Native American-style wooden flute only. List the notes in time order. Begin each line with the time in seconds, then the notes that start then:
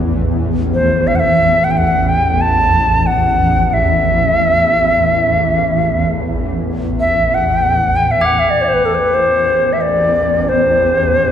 0.74 C5
1.07 E5
1.15 F#5
1.19 E5
1.64 F#5
1.71 G5
1.78 F#5
2.09 G5
2.41 A5
3.07 F#5
3.70 E5 F#5
7.00 E5
7.34 F#5
7.96 G5
8.11 E5
8.25 F#5
8.39 E5
8.47 D5 E5
8.61 C5 D5
8.68 C5
8.74 B4
8.85 A4
8.95 C5
8.99 B4
9.14 C5
9.73 E5
9.81 D5
10.49 C5